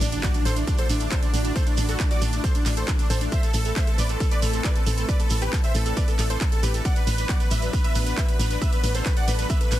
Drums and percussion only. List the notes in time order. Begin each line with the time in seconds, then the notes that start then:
0.01 open hi-hat, shekere
0.12 closed hi-hat, shekere
0.23 kick, clap, closed hi-hat, shekere
0.34 closed hi-hat, shekere
0.45 open hi-hat, shekere
0.56 closed hi-hat, shekere
0.67 kick, closed hi-hat, shekere
0.77 closed hi-hat, shekere
0.89 open hi-hat, shekere
1.00 closed hi-hat, shekere
1.11 kick, clap, closed hi-hat, shekere
1.22 closed hi-hat, shekere
1.34 open hi-hat, shekere
1.44 closed hi-hat, shekere
1.56 kick, closed hi-hat, shekere
1.67 closed hi-hat, shekere
1.77 open hi-hat, shekere
1.89 closed hi-hat, shekere
2.00 kick, clap, closed hi-hat, shekere
2.11 closed hi-hat, shekere
2.22 open hi-hat, shekere
2.32 closed hi-hat, shekere
2.44 kick, closed hi-hat, shekere
2.55 closed hi-hat, shekere
2.66 clap, open hi-hat, shekere
2.77 closed hi-hat, shekere
2.88 kick, clap, closed hi-hat, shekere
2.99 closed hi-hat, shekere
3.10 open hi-hat, shekere
3.21 closed hi-hat, shekere
3.32 kick, closed hi-hat, shekere
3.43 closed hi-hat, shekere
3.54 open hi-hat, shekere
3.65 closed hi-hat, shekere
3.76 kick, clap, closed hi-hat, shekere
3.87 closed hi-hat, shekere
3.98 open hi-hat, shekere
4.09 closed hi-hat, shekere
4.20 kick, closed hi-hat, shekere
4.31 closed hi-hat, shekere
4.42 open hi-hat, shekere
4.53 closed hi-hat, shekere
4.64 kick, clap, closed hi-hat, shekere
4.75 closed hi-hat, shekere
4.86 open hi-hat, shekere
4.98 closed hi-hat, shekere
5.09 kick, closed hi-hat, shekere
5.19 closed hi-hat, shekere
5.30 open hi-hat, shekere
5.42 closed hi-hat, shekere
5.53 kick, clap, closed hi-hat, shekere
5.64 closed hi-hat, shekere
5.75 open hi-hat, shekere
5.86 closed hi-hat, shekere
5.97 kick, closed hi-hat, shekere
6.08 closed hi-hat, shekere
6.19 clap, open hi-hat, shekere
6.30 closed hi-hat, shekere
6.41 kick, clap, closed hi-hat, shekere
6.52 closed hi-hat, shekere
6.63 open hi-hat, shekere
6.74 closed hi-hat, shekere
6.85 kick, closed hi-hat, shekere
6.96 closed hi-hat, shekere
7.07 open hi-hat, ride, shekere
7.18 closed hi-hat, shekere
7.29 kick, clap, closed hi-hat, shekere
7.40 closed hi-hat, shekere
7.51 open hi-hat, ride, shekere
7.62 closed hi-hat, shekere
7.73 kick, closed hi-hat, shekere
7.84 closed hi-hat, shekere
7.95 open hi-hat, ride, shekere
8.06 closed hi-hat, shekere
8.17 kick, clap, closed hi-hat, shekere
8.29 closed hi-hat, shekere
8.40 open hi-hat, ride, shekere
8.50 closed hi-hat, shekere
8.61 kick, closed hi-hat, shekere
8.73 closed hi-hat, shekere
8.84 open hi-hat, ride, shekere
8.95 closed hi-hat, shekere
9.06 kick, clap, closed hi-hat, shekere
9.16 closed hi-hat, shekere
9.28 open hi-hat, ride, shekere
9.39 closed hi-hat, shekere
9.50 kick, closed hi-hat, shekere
9.61 closed hi-hat, shekere
9.72 clap, open hi-hat, ride, shekere